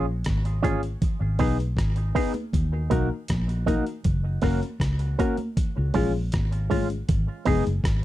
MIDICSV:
0, 0, Header, 1, 6, 480
1, 0, Start_track
1, 0, Tempo, 758054
1, 646, Time_signature, 4, 2, 24, 8
1, 5094, End_track
2, 0, Start_track
2, 0, Title_t, "Grand piano"
2, 0, Program_c, 0, 0
2, 403, Note_on_c, 0, 61, 85
2, 404, Note_on_c, 0, 65, 78
2, 407, Note_on_c, 0, 68, 77
2, 409, Note_on_c, 0, 73, 97
2, 500, Note_off_c, 0, 61, 0
2, 501, Note_off_c, 0, 65, 0
2, 502, Note_off_c, 0, 68, 0
2, 503, Note_off_c, 0, 73, 0
2, 881, Note_on_c, 0, 59, 90
2, 884, Note_on_c, 0, 63, 79
2, 887, Note_on_c, 0, 68, 80
2, 888, Note_on_c, 0, 71, 97
2, 980, Note_off_c, 0, 59, 0
2, 981, Note_off_c, 0, 63, 0
2, 983, Note_off_c, 0, 68, 0
2, 983, Note_off_c, 0, 71, 0
2, 1359, Note_on_c, 0, 59, 90
2, 1360, Note_on_c, 0, 63, 82
2, 1364, Note_on_c, 0, 68, 84
2, 1365, Note_on_c, 0, 71, 92
2, 1459, Note_off_c, 0, 59, 0
2, 1459, Note_off_c, 0, 63, 0
2, 1461, Note_off_c, 0, 68, 0
2, 1462, Note_off_c, 0, 71, 0
2, 1724, Note_on_c, 0, 66, 24
2, 1725, Note_on_c, 0, 70, 26
2, 1773, Note_off_c, 0, 66, 0
2, 1774, Note_off_c, 0, 70, 0
2, 1836, Note_on_c, 0, 58, 86
2, 1839, Note_on_c, 0, 63, 77
2, 1841, Note_on_c, 0, 66, 84
2, 1844, Note_on_c, 0, 70, 101
2, 1937, Note_off_c, 0, 58, 0
2, 1939, Note_off_c, 0, 63, 0
2, 1940, Note_off_c, 0, 66, 0
2, 1941, Note_off_c, 0, 70, 0
2, 2322, Note_on_c, 0, 58, 80
2, 2325, Note_on_c, 0, 63, 76
2, 2328, Note_on_c, 0, 66, 80
2, 2329, Note_on_c, 0, 70, 93
2, 2420, Note_off_c, 0, 58, 0
2, 2422, Note_off_c, 0, 63, 0
2, 2423, Note_off_c, 0, 66, 0
2, 2424, Note_off_c, 0, 70, 0
2, 2802, Note_on_c, 0, 58, 88
2, 2805, Note_on_c, 0, 61, 80
2, 2808, Note_on_c, 0, 66, 78
2, 2810, Note_on_c, 0, 70, 98
2, 2900, Note_off_c, 0, 58, 0
2, 2902, Note_off_c, 0, 61, 0
2, 2903, Note_off_c, 0, 66, 0
2, 2904, Note_off_c, 0, 70, 0
2, 3286, Note_on_c, 0, 58, 84
2, 3288, Note_on_c, 0, 61, 81
2, 3290, Note_on_c, 0, 66, 83
2, 3294, Note_on_c, 0, 70, 93
2, 3382, Note_off_c, 0, 58, 0
2, 3383, Note_off_c, 0, 61, 0
2, 3384, Note_off_c, 0, 66, 0
2, 3386, Note_off_c, 0, 70, 0
2, 3649, Note_on_c, 0, 65, 22
2, 3649, Note_on_c, 0, 68, 25
2, 3696, Note_off_c, 0, 65, 0
2, 3696, Note_off_c, 0, 68, 0
2, 3767, Note_on_c, 0, 56, 87
2, 3770, Note_on_c, 0, 61, 74
2, 3770, Note_on_c, 0, 65, 78
2, 3775, Note_on_c, 0, 68, 88
2, 3863, Note_off_c, 0, 56, 0
2, 3864, Note_off_c, 0, 61, 0
2, 3864, Note_off_c, 0, 65, 0
2, 3866, Note_off_c, 0, 68, 0
2, 4247, Note_on_c, 0, 56, 84
2, 4248, Note_on_c, 0, 61, 76
2, 4251, Note_on_c, 0, 65, 75
2, 4254, Note_on_c, 0, 68, 91
2, 4343, Note_off_c, 0, 56, 0
2, 4343, Note_off_c, 0, 61, 0
2, 4345, Note_off_c, 0, 65, 0
2, 4346, Note_off_c, 0, 68, 0
2, 4726, Note_on_c, 0, 56, 93
2, 4729, Note_on_c, 0, 59, 89
2, 4734, Note_on_c, 0, 63, 86
2, 4736, Note_on_c, 0, 68, 101
2, 4822, Note_off_c, 0, 56, 0
2, 4824, Note_off_c, 0, 59, 0
2, 4826, Note_off_c, 0, 63, 0
2, 4827, Note_off_c, 0, 68, 0
2, 5094, End_track
3, 0, Start_track
3, 0, Title_t, "Clean electric guitar"
3, 0, Program_c, 1, 27
3, 396, Note_on_c, 1, 61, 86
3, 403, Note_on_c, 1, 65, 85
3, 407, Note_on_c, 1, 68, 100
3, 507, Note_off_c, 1, 61, 0
3, 510, Note_off_c, 1, 65, 0
3, 512, Note_off_c, 1, 68, 0
3, 880, Note_on_c, 1, 59, 75
3, 883, Note_on_c, 1, 63, 76
3, 889, Note_on_c, 1, 68, 77
3, 989, Note_off_c, 1, 59, 0
3, 990, Note_off_c, 1, 63, 0
3, 993, Note_off_c, 1, 68, 0
3, 1361, Note_on_c, 1, 59, 91
3, 1365, Note_on_c, 1, 63, 93
3, 1367, Note_on_c, 1, 68, 92
3, 1469, Note_off_c, 1, 59, 0
3, 1471, Note_off_c, 1, 63, 0
3, 1472, Note_off_c, 1, 68, 0
3, 1836, Note_on_c, 1, 58, 79
3, 1841, Note_on_c, 1, 63, 86
3, 1848, Note_on_c, 1, 66, 92
3, 1947, Note_off_c, 1, 58, 0
3, 1949, Note_off_c, 1, 63, 0
3, 1953, Note_off_c, 1, 66, 0
3, 2320, Note_on_c, 1, 58, 70
3, 2322, Note_on_c, 1, 63, 88
3, 2328, Note_on_c, 1, 66, 88
3, 2429, Note_off_c, 1, 58, 0
3, 2430, Note_off_c, 1, 63, 0
3, 2433, Note_off_c, 1, 66, 0
3, 2798, Note_on_c, 1, 58, 77
3, 2803, Note_on_c, 1, 61, 80
3, 2804, Note_on_c, 1, 66, 80
3, 2908, Note_off_c, 1, 58, 0
3, 2910, Note_off_c, 1, 61, 0
3, 2911, Note_off_c, 1, 66, 0
3, 3284, Note_on_c, 1, 58, 76
3, 3286, Note_on_c, 1, 61, 90
3, 3292, Note_on_c, 1, 66, 90
3, 3391, Note_off_c, 1, 58, 0
3, 3392, Note_off_c, 1, 61, 0
3, 3395, Note_off_c, 1, 66, 0
3, 3761, Note_on_c, 1, 56, 74
3, 3764, Note_on_c, 1, 61, 79
3, 3769, Note_on_c, 1, 65, 83
3, 3869, Note_off_c, 1, 56, 0
3, 3871, Note_off_c, 1, 61, 0
3, 3873, Note_off_c, 1, 65, 0
3, 4241, Note_on_c, 1, 56, 76
3, 4245, Note_on_c, 1, 61, 77
3, 4250, Note_on_c, 1, 65, 88
3, 4349, Note_off_c, 1, 56, 0
3, 4352, Note_off_c, 1, 61, 0
3, 4354, Note_off_c, 1, 65, 0
3, 4720, Note_on_c, 1, 59, 84
3, 4724, Note_on_c, 1, 63, 96
3, 4731, Note_on_c, 1, 68, 102
3, 4829, Note_off_c, 1, 59, 0
3, 4831, Note_off_c, 1, 63, 0
3, 4835, Note_off_c, 1, 68, 0
3, 5094, End_track
4, 0, Start_track
4, 0, Title_t, "Fingered electric bass"
4, 0, Program_c, 2, 33
4, 0, Note_on_c, 2, 34, 92
4, 142, Note_off_c, 2, 34, 0
4, 169, Note_on_c, 2, 32, 90
4, 599, Note_off_c, 2, 32, 0
4, 764, Note_on_c, 2, 32, 92
4, 872, Note_off_c, 2, 32, 0
4, 885, Note_on_c, 2, 35, 77
4, 1101, Note_off_c, 2, 35, 0
4, 1121, Note_on_c, 2, 32, 94
4, 1339, Note_off_c, 2, 32, 0
4, 1607, Note_on_c, 2, 39, 98
4, 1822, Note_off_c, 2, 39, 0
4, 1846, Note_on_c, 2, 35, 93
4, 1955, Note_off_c, 2, 35, 0
4, 2089, Note_on_c, 2, 34, 96
4, 2412, Note_off_c, 2, 34, 0
4, 2567, Note_on_c, 2, 30, 96
4, 2783, Note_off_c, 2, 30, 0
4, 2806, Note_on_c, 2, 30, 87
4, 2915, Note_off_c, 2, 30, 0
4, 3042, Note_on_c, 2, 37, 95
4, 3260, Note_off_c, 2, 37, 0
4, 3657, Note_on_c, 2, 37, 87
4, 3760, Note_off_c, 2, 37, 0
4, 3771, Note_on_c, 2, 34, 93
4, 3984, Note_off_c, 2, 34, 0
4, 4011, Note_on_c, 2, 32, 83
4, 4440, Note_off_c, 2, 32, 0
4, 4489, Note_on_c, 2, 32, 99
4, 4597, Note_off_c, 2, 32, 0
4, 4730, Note_on_c, 2, 29, 88
4, 4837, Note_off_c, 2, 29, 0
4, 4855, Note_on_c, 2, 30, 85
4, 4959, Note_off_c, 2, 30, 0
4, 4963, Note_on_c, 2, 32, 91
4, 5094, Note_off_c, 2, 32, 0
4, 5094, End_track
5, 0, Start_track
5, 0, Title_t, "Muted clean electric guitar strokes"
5, 1482, Note_on_c, 9, 29, 50
5, 1545, Note_off_c, 9, 29, 0
5, 5094, End_track
6, 0, Start_track
6, 0, Title_t, "Drums"
6, 155, Note_on_c, 9, 42, 90
6, 166, Note_on_c, 9, 37, 101
6, 168, Note_on_c, 9, 36, 96
6, 169, Note_on_c, 9, 63, 46
6, 218, Note_off_c, 9, 42, 0
6, 229, Note_off_c, 9, 37, 0
6, 231, Note_off_c, 9, 36, 0
6, 233, Note_off_c, 9, 63, 0
6, 286, Note_on_c, 9, 42, 54
6, 349, Note_off_c, 9, 42, 0
6, 404, Note_on_c, 9, 36, 91
6, 407, Note_on_c, 9, 63, 64
6, 407, Note_on_c, 9, 64, 61
6, 409, Note_on_c, 9, 42, 68
6, 467, Note_off_c, 9, 36, 0
6, 470, Note_off_c, 9, 63, 0
6, 470, Note_off_c, 9, 64, 0
6, 472, Note_off_c, 9, 42, 0
6, 525, Note_on_c, 9, 42, 49
6, 588, Note_off_c, 9, 42, 0
6, 645, Note_on_c, 9, 36, 114
6, 645, Note_on_c, 9, 42, 80
6, 645, Note_on_c, 9, 64, 74
6, 708, Note_off_c, 9, 36, 0
6, 708, Note_off_c, 9, 42, 0
6, 708, Note_off_c, 9, 64, 0
6, 880, Note_on_c, 9, 46, 55
6, 882, Note_on_c, 9, 64, 68
6, 885, Note_on_c, 9, 36, 94
6, 943, Note_off_c, 9, 46, 0
6, 946, Note_off_c, 9, 64, 0
6, 948, Note_off_c, 9, 36, 0
6, 1007, Note_on_c, 9, 63, 44
6, 1014, Note_on_c, 9, 42, 45
6, 1070, Note_off_c, 9, 63, 0
6, 1077, Note_off_c, 9, 42, 0
6, 1119, Note_on_c, 9, 36, 114
6, 1130, Note_on_c, 9, 37, 106
6, 1132, Note_on_c, 9, 42, 94
6, 1182, Note_off_c, 9, 36, 0
6, 1194, Note_off_c, 9, 37, 0
6, 1195, Note_off_c, 9, 42, 0
6, 1240, Note_on_c, 9, 42, 54
6, 1304, Note_off_c, 9, 42, 0
6, 1365, Note_on_c, 9, 36, 93
6, 1369, Note_on_c, 9, 46, 69
6, 1428, Note_off_c, 9, 36, 0
6, 1432, Note_off_c, 9, 46, 0
6, 1481, Note_on_c, 9, 42, 44
6, 1484, Note_on_c, 9, 63, 73
6, 1545, Note_off_c, 9, 42, 0
6, 1547, Note_off_c, 9, 63, 0
6, 1604, Note_on_c, 9, 36, 109
6, 1607, Note_on_c, 9, 64, 72
6, 1609, Note_on_c, 9, 42, 94
6, 1668, Note_off_c, 9, 36, 0
6, 1670, Note_off_c, 9, 64, 0
6, 1672, Note_off_c, 9, 42, 0
6, 1842, Note_on_c, 9, 42, 81
6, 1844, Note_on_c, 9, 64, 63
6, 1846, Note_on_c, 9, 36, 95
6, 1906, Note_off_c, 9, 42, 0
6, 1907, Note_off_c, 9, 64, 0
6, 1909, Note_off_c, 9, 36, 0
6, 2079, Note_on_c, 9, 42, 96
6, 2086, Note_on_c, 9, 63, 47
6, 2088, Note_on_c, 9, 36, 99
6, 2090, Note_on_c, 9, 37, 100
6, 2143, Note_off_c, 9, 42, 0
6, 2149, Note_off_c, 9, 63, 0
6, 2151, Note_off_c, 9, 36, 0
6, 2153, Note_off_c, 9, 37, 0
6, 2211, Note_on_c, 9, 42, 52
6, 2274, Note_off_c, 9, 42, 0
6, 2325, Note_on_c, 9, 36, 84
6, 2328, Note_on_c, 9, 63, 60
6, 2328, Note_on_c, 9, 64, 60
6, 2331, Note_on_c, 9, 42, 66
6, 2388, Note_off_c, 9, 36, 0
6, 2391, Note_off_c, 9, 63, 0
6, 2391, Note_off_c, 9, 64, 0
6, 2395, Note_off_c, 9, 42, 0
6, 2448, Note_on_c, 9, 42, 47
6, 2511, Note_off_c, 9, 42, 0
6, 2561, Note_on_c, 9, 42, 82
6, 2564, Note_on_c, 9, 36, 111
6, 2567, Note_on_c, 9, 64, 71
6, 2624, Note_off_c, 9, 42, 0
6, 2628, Note_off_c, 9, 36, 0
6, 2630, Note_off_c, 9, 64, 0
6, 2796, Note_on_c, 9, 46, 53
6, 2803, Note_on_c, 9, 64, 65
6, 2804, Note_on_c, 9, 36, 91
6, 2808, Note_on_c, 9, 37, 63
6, 2860, Note_off_c, 9, 46, 0
6, 2866, Note_off_c, 9, 64, 0
6, 2867, Note_off_c, 9, 36, 0
6, 2871, Note_off_c, 9, 37, 0
6, 2930, Note_on_c, 9, 42, 45
6, 2933, Note_on_c, 9, 63, 46
6, 2993, Note_off_c, 9, 42, 0
6, 2996, Note_off_c, 9, 63, 0
6, 3039, Note_on_c, 9, 36, 109
6, 3048, Note_on_c, 9, 37, 114
6, 3049, Note_on_c, 9, 42, 93
6, 3102, Note_off_c, 9, 36, 0
6, 3111, Note_off_c, 9, 37, 0
6, 3113, Note_off_c, 9, 42, 0
6, 3161, Note_on_c, 9, 42, 54
6, 3224, Note_off_c, 9, 42, 0
6, 3287, Note_on_c, 9, 36, 101
6, 3290, Note_on_c, 9, 42, 72
6, 3351, Note_off_c, 9, 36, 0
6, 3353, Note_off_c, 9, 42, 0
6, 3403, Note_on_c, 9, 42, 43
6, 3409, Note_on_c, 9, 63, 77
6, 3466, Note_off_c, 9, 42, 0
6, 3473, Note_off_c, 9, 63, 0
6, 3527, Note_on_c, 9, 36, 112
6, 3527, Note_on_c, 9, 64, 72
6, 3528, Note_on_c, 9, 42, 93
6, 3590, Note_off_c, 9, 36, 0
6, 3590, Note_off_c, 9, 64, 0
6, 3591, Note_off_c, 9, 42, 0
6, 3760, Note_on_c, 9, 46, 53
6, 3768, Note_on_c, 9, 36, 86
6, 3771, Note_on_c, 9, 64, 60
6, 3823, Note_off_c, 9, 46, 0
6, 3831, Note_off_c, 9, 36, 0
6, 3834, Note_off_c, 9, 64, 0
6, 4002, Note_on_c, 9, 42, 88
6, 4012, Note_on_c, 9, 36, 96
6, 4012, Note_on_c, 9, 63, 46
6, 4013, Note_on_c, 9, 37, 99
6, 4066, Note_off_c, 9, 42, 0
6, 4075, Note_off_c, 9, 36, 0
6, 4076, Note_off_c, 9, 37, 0
6, 4076, Note_off_c, 9, 63, 0
6, 4132, Note_on_c, 9, 42, 53
6, 4195, Note_off_c, 9, 42, 0
6, 4247, Note_on_c, 9, 36, 88
6, 4249, Note_on_c, 9, 63, 65
6, 4249, Note_on_c, 9, 64, 62
6, 4250, Note_on_c, 9, 46, 65
6, 4311, Note_off_c, 9, 36, 0
6, 4312, Note_off_c, 9, 63, 0
6, 4312, Note_off_c, 9, 64, 0
6, 4313, Note_off_c, 9, 46, 0
6, 4369, Note_on_c, 9, 42, 50
6, 4432, Note_off_c, 9, 42, 0
6, 4487, Note_on_c, 9, 42, 92
6, 4489, Note_on_c, 9, 36, 116
6, 4489, Note_on_c, 9, 64, 79
6, 4550, Note_off_c, 9, 42, 0
6, 4552, Note_off_c, 9, 36, 0
6, 4552, Note_off_c, 9, 64, 0
6, 4721, Note_on_c, 9, 46, 56
6, 4728, Note_on_c, 9, 36, 106
6, 4735, Note_on_c, 9, 64, 71
6, 4784, Note_off_c, 9, 46, 0
6, 4792, Note_off_c, 9, 36, 0
6, 4798, Note_off_c, 9, 64, 0
6, 4855, Note_on_c, 9, 42, 50
6, 4857, Note_on_c, 9, 63, 49
6, 4918, Note_off_c, 9, 42, 0
6, 4920, Note_off_c, 9, 63, 0
6, 4963, Note_on_c, 9, 36, 115
6, 4972, Note_on_c, 9, 37, 115
6, 4973, Note_on_c, 9, 42, 100
6, 5026, Note_off_c, 9, 36, 0
6, 5035, Note_off_c, 9, 37, 0
6, 5037, Note_off_c, 9, 42, 0
6, 5094, End_track
0, 0, End_of_file